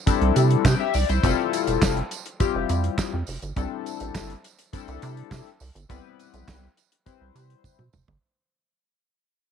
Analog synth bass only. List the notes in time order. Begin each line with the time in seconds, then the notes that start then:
0.22 C2
0.36 C3
0.65 C3
0.95 C2
1.09 C2
1.24 F1
1.68 E1
1.82 F1
2.55 F1
2.70 F2
3.14 F2
3.28 F1
3.43 G1
3.57 C2
4.01 A1
4.15 G1
4.88 C2
5.03 C3
5.31 C3
5.61 C2
5.75 G1
5.90 C2
6.34 B1
6.48 C2
7.21 C2
7.35 C3
7.79 B2
7.93 F1
8.08 G1